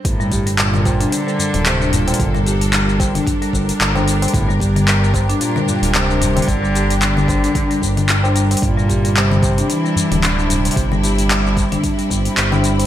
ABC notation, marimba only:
X:1
M:4/4
L:1/16
Q:"Swing 16ths" 1/4=112
K:Gdor
V:1 name="Marimba" clef=bass
z G, G G, G,3 D z G,4 D G,2- | G, G, G G, G,3 D z G,4 D G,2- | G, G, G G, G,3 D z G,4 D G,2- | G, G, G G, G,3 D z G,4 D G,2 |
z G, G G, G,3 D z G,4 D G,2- | G, G, G G, G,3 D z G,4 D G,2 |]